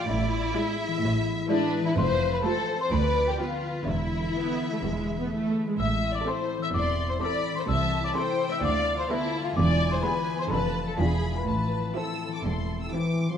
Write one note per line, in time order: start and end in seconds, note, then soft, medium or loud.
0.00 0.11 A3 soft
0.00 0.11 D4 soft
0.00 0.10 F4 soft
0.00 0.11 A4 soft
0.00 0.54 D5 medium
0.08 0.46 A1 medium
0.08 0.46 A2 medium
0.08 1.02 A2 medium
0.08 1.24 E4 medium
0.08 1.22 E5 medium
0.25 1.18 B3 soft
0.41 0.70 E4 medium
0.55 0.91 G#3 medium
0.55 0.90 E4 medium
0.55 1.49 G#4 soft
0.55 1.50 E5 medium
0.71 1.33 E4 medium
0.87 1.80 E3 soft
1.02 1.40 A1 medium
1.02 1.39 A2 medium
1.02 1.99 A2 medium
1.19 1.99 B3 soft
1.35 1.65 E4 medium
1.50 1.85 G#3 medium
1.50 1.83 D4 medium
1.50 1.85 E4 medium
1.50 1.99 G#4 medium
1.50 2.42 B4 medium
1.50 1.82 D5 medium
1.66 1.99 E4 soft
1.81 1.99 E3 medium
1.86 1.97 E4 medium
1.86 1.96 E5 medium
1.97 2.34 F1 medium
1.97 2.34 F2 medium
1.97 3.89 F3 medium
1.97 2.32 C5 medium
1.97 2.30 C6 medium
2.13 3.22 F4 soft
2.29 2.59 A4 medium
2.33 2.45 B4 medium
2.33 2.44 B5 medium
2.44 2.79 A3 medium
2.44 2.79 F4 medium
2.44 2.79 A4 medium
2.44 2.90 C5 medium
2.44 2.93 C5 soft
2.44 2.77 A5 medium
2.60 2.93 A4 soft
2.76 2.93 C4 soft
2.81 2.92 C5 medium
2.81 2.91 C6 medium
2.91 3.29 D2 medium
2.91 3.89 D3 medium
2.91 3.27 B4 medium
2.91 3.39 D5 medium
2.91 3.25 B5 medium
3.07 3.88 D4 soft
3.23 3.54 F4 soft
3.27 3.40 G4 medium
3.27 3.38 G5 medium
3.39 3.74 B3 medium
3.39 3.74 F4 medium
3.39 3.87 F4 medium
3.39 4.34 B4 soft
3.39 3.86 B4 medium
3.39 3.84 F5 medium
3.55 3.89 F4 soft
3.71 4.65 B3 soft
3.85 4.25 E1 medium
3.85 4.24 E2 medium
3.85 4.82 E3 soft
3.85 5.30 E4 medium
3.85 5.26 E5 soft
3.85 5.56 E5 soft
4.03 4.98 E4 soft
4.20 4.50 A4 soft
4.35 4.69 B3 medium
4.35 5.30 B4 soft
4.51 4.85 A4 soft
4.67 5.62 B3 soft
4.73 4.77 A3 soft
4.83 5.21 E1 medium
4.83 5.21 E2 medium
4.83 5.81 E3 soft
4.83 5.18 G#3 soft
4.99 6.10 E4 soft
5.15 5.46 G#4 soft
5.20 5.31 B3 soft
5.31 5.66 A3 medium
5.31 5.81 B4 soft
5.47 5.81 G#4 soft
5.63 5.81 B3 soft
5.68 5.79 G#3 soft
5.78 6.16 A1 medium
5.78 6.16 A2 medium
5.78 7.71 A2 soft
5.78 6.11 E5 medium
5.78 6.12 E6 medium
5.95 6.73 C4 soft
6.11 6.41 E4 soft
6.15 6.27 D5 medium
6.15 6.26 D6 medium
6.26 6.62 C4 medium
6.26 7.21 A4 soft
6.26 6.62 A4 medium
6.26 6.62 C5 medium
6.26 6.60 C6 medium
6.42 7.05 E4 soft
6.58 6.89 E3 soft
6.62 6.68 E5 medium
6.62 6.73 E6 medium
6.74 7.12 E1 medium
6.74 7.11 E2 medium
6.74 7.83 C4 soft
6.74 7.09 D5 medium
6.74 7.18 C6 medium
6.74 7.07 D6 medium
6.90 7.52 E3 soft
7.06 7.36 E4 soft
7.06 7.20 C6 medium
7.10 7.15 C5 medium
7.21 7.57 C4 medium
7.21 8.15 A4 soft
7.21 7.57 A4 medium
7.21 7.56 D5 medium
7.21 7.68 B5 medium
7.21 7.54 D6 medium
7.37 7.99 E4 soft
7.53 7.71 E3 soft
7.53 7.67 C6 medium
7.58 7.63 C5 medium
7.68 8.06 C2 medium
7.68 8.65 C3 soft
7.68 8.04 E5 medium
7.68 8.15 A5 medium
7.68 8.01 E6 medium
7.85 8.65 C4 soft
8.00 8.31 E4 soft
8.00 8.15 D6 medium
8.05 8.10 D5 medium
8.15 8.51 C4 medium
8.15 9.09 A4 soft
8.15 8.51 A4 medium
8.15 8.50 C5 medium
8.15 8.63 G5 medium
8.15 8.48 C6 medium
8.32 8.65 E4 medium
8.48 9.41 A3 soft
8.48 8.63 E5 medium
8.48 8.62 E6 medium
8.62 9.00 D2 medium
8.62 9.59 D3 soft
8.62 8.97 D5 medium
8.62 9.10 F5 medium
8.62 8.96 D6 medium
8.79 10.35 B3 soft
8.95 9.25 F4 soft
8.95 9.10 C5 medium
8.95 9.09 C6 medium
9.09 9.45 B3 medium
9.09 9.44 E4 medium
9.09 9.59 A4 medium
9.09 9.45 A4 medium
9.09 9.43 E5 medium
9.09 9.57 A5 medium
9.26 9.59 F4 soft
9.42 9.59 A3 soft
9.42 9.57 F4 medium
9.42 9.56 F5 medium
9.57 9.94 E1 medium
9.57 9.94 E2 medium
9.57 10.53 E3 medium
9.57 9.91 D5 loud
9.57 10.49 G#5 medium
9.57 9.89 D6 medium
9.73 10.53 E4 soft
9.89 10.19 G#4 medium
9.89 10.02 C6 medium
9.93 10.04 C5 medium
10.03 10.39 B3 medium
10.03 10.39 G#4 medium
10.03 10.39 B4 medium
10.03 10.53 B4 soft
10.03 10.36 B5 medium
10.20 10.53 G#4 soft
10.36 10.53 B3 soft
10.36 10.50 C6 medium
10.41 10.45 C5 medium
10.51 10.89 F1 medium
10.51 10.89 F2 medium
10.51 11.49 F3 medium
10.51 10.86 D4 medium
10.51 10.86 A4 medium
10.51 10.86 B4 medium
10.51 10.98 A5 medium
10.51 10.84 B5 medium
10.68 10.82 D4 soft
10.83 11.13 D4 soft
10.83 11.01 A4 soft
10.87 10.99 A4 medium
10.87 10.98 A5 medium
10.99 11.37 E1 medium
10.99 11.37 E2 medium
10.99 11.49 E3 soft
10.99 11.35 D4 medium
10.99 11.35 F4 medium
10.99 11.34 G#4 medium
10.99 11.33 G#5 medium
10.99 11.46 B5 medium
11.14 11.29 D4 soft
11.30 11.49 D4 soft
11.30 11.49 F4 soft
11.36 11.46 B4 medium
11.36 11.47 B5 soft
11.47 11.86 A1 medium
11.47 13.38 A2 soft
11.47 11.85 A2 medium
11.47 11.95 B4 medium
11.47 11.90 A5 soft
11.47 11.93 B5 medium
11.63 12.44 A3 soft
11.80 12.11 C4 soft
11.95 12.32 C4 soft
11.95 12.92 E4 soft
11.95 12.32 E4 soft
11.95 12.92 A4 soft
11.95 12.89 A5 soft
11.95 12.30 E6 medium
12.12 12.76 C4 soft
12.28 12.60 E3 soft
12.34 12.45 D6 soft
12.44 12.83 E1 soft
12.44 12.82 E2 soft
12.44 13.38 A3 soft
12.44 12.80 C6 soft
12.61 13.24 E3 soft
12.77 13.08 C4 soft
12.82 12.93 E6 soft
12.92 13.26 E3 soft
12.92 13.29 C4 soft
12.92 13.29 E4 soft
12.92 13.38 E4 soft
12.92 13.28 D6 soft
13.09 13.38 C4 soft
13.25 13.38 E3 soft
13.25 13.38 C6 soft
13.30 13.38 F3 soft